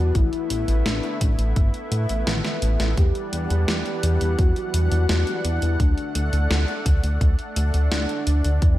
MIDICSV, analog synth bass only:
0, 0, Header, 1, 2, 480
1, 0, Start_track
1, 0, Tempo, 705882
1, 103, Time_signature, 4, 2, 24, 8
1, 5974, End_track
2, 0, Start_track
2, 0, Title_t, "Analog synth bass"
2, 0, Program_c, 0, 38
2, 0, Note_on_c, 0, 40, 76
2, 84, Note_off_c, 0, 40, 0
2, 103, Note_on_c, 0, 33, 99
2, 205, Note_off_c, 0, 33, 0
2, 342, Note_on_c, 0, 33, 86
2, 444, Note_off_c, 0, 33, 0
2, 462, Note_on_c, 0, 33, 79
2, 564, Note_off_c, 0, 33, 0
2, 582, Note_on_c, 0, 33, 97
2, 684, Note_off_c, 0, 33, 0
2, 823, Note_on_c, 0, 33, 94
2, 925, Note_off_c, 0, 33, 0
2, 942, Note_on_c, 0, 33, 82
2, 1044, Note_off_c, 0, 33, 0
2, 1064, Note_on_c, 0, 31, 102
2, 1165, Note_off_c, 0, 31, 0
2, 1303, Note_on_c, 0, 45, 90
2, 1405, Note_off_c, 0, 45, 0
2, 1424, Note_on_c, 0, 33, 78
2, 1525, Note_off_c, 0, 33, 0
2, 1543, Note_on_c, 0, 33, 95
2, 1645, Note_off_c, 0, 33, 0
2, 1784, Note_on_c, 0, 33, 87
2, 1885, Note_off_c, 0, 33, 0
2, 1903, Note_on_c, 0, 33, 78
2, 2005, Note_off_c, 0, 33, 0
2, 2023, Note_on_c, 0, 40, 97
2, 2125, Note_off_c, 0, 40, 0
2, 2263, Note_on_c, 0, 40, 90
2, 2365, Note_off_c, 0, 40, 0
2, 2384, Note_on_c, 0, 40, 82
2, 2485, Note_off_c, 0, 40, 0
2, 2504, Note_on_c, 0, 40, 94
2, 2605, Note_off_c, 0, 40, 0
2, 2744, Note_on_c, 0, 40, 92
2, 2845, Note_off_c, 0, 40, 0
2, 2865, Note_on_c, 0, 40, 82
2, 2965, Note_off_c, 0, 40, 0
2, 2983, Note_on_c, 0, 40, 99
2, 3085, Note_off_c, 0, 40, 0
2, 3223, Note_on_c, 0, 40, 90
2, 3325, Note_off_c, 0, 40, 0
2, 3344, Note_on_c, 0, 40, 82
2, 3445, Note_off_c, 0, 40, 0
2, 3464, Note_on_c, 0, 40, 98
2, 3565, Note_off_c, 0, 40, 0
2, 3704, Note_on_c, 0, 40, 88
2, 3805, Note_off_c, 0, 40, 0
2, 3825, Note_on_c, 0, 40, 78
2, 3925, Note_off_c, 0, 40, 0
2, 3943, Note_on_c, 0, 38, 96
2, 4045, Note_off_c, 0, 38, 0
2, 4184, Note_on_c, 0, 38, 92
2, 4285, Note_off_c, 0, 38, 0
2, 4304, Note_on_c, 0, 38, 81
2, 4405, Note_off_c, 0, 38, 0
2, 4423, Note_on_c, 0, 38, 102
2, 4525, Note_off_c, 0, 38, 0
2, 4664, Note_on_c, 0, 38, 90
2, 4765, Note_off_c, 0, 38, 0
2, 4782, Note_on_c, 0, 38, 81
2, 4884, Note_off_c, 0, 38, 0
2, 4904, Note_on_c, 0, 38, 100
2, 5005, Note_off_c, 0, 38, 0
2, 5143, Note_on_c, 0, 38, 91
2, 5245, Note_off_c, 0, 38, 0
2, 5264, Note_on_c, 0, 38, 83
2, 5365, Note_off_c, 0, 38, 0
2, 5384, Note_on_c, 0, 38, 93
2, 5485, Note_off_c, 0, 38, 0
2, 5625, Note_on_c, 0, 38, 91
2, 5726, Note_off_c, 0, 38, 0
2, 5745, Note_on_c, 0, 38, 78
2, 5846, Note_off_c, 0, 38, 0
2, 5863, Note_on_c, 0, 40, 97
2, 5965, Note_off_c, 0, 40, 0
2, 5974, End_track
0, 0, End_of_file